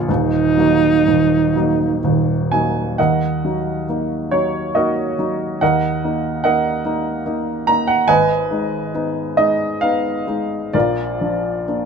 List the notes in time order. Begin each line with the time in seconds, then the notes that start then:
Already playing: A#0 A#1 F3 A#3 F4
0.09 D#1 D#2 D#4
0.58 F#3 A#3 D#4
1.07 D#1 D#2
1.56 F#3 A#3 D#4
2.04 D#1 D#2
2.52 F#3 A#3 D#4 G#5
2.98 D#2 A#4 D#5 F#5
3.45 F#3 D#4
3.89 A#3 D#4
4.31 F#3 D#4 C#5
4.75 A#3 D#4 F#4 A#4 D#5
5.19 F#3 D#4
5.61 D#2 A#4 D#5 F#5
6.04 A#3 D#4
6.44 A#3 D#4 A#4 D#5 F#5
6.85 A#3 D#4
7.26 A#3 D#4
7.67 A#3 D#4 A#5
7.87 F#5
8.08 G#1 B4 D#5 G#5
8.51 G#3 D#4
8.94 B3 D#4
9.37 G#3 D#4 D#5
9.81 B3 D#4 F5
10.27 G#3 D#4
10.73 A#1 F4 A#4 D5
11.21 F3 D4
11.68 A#3 D4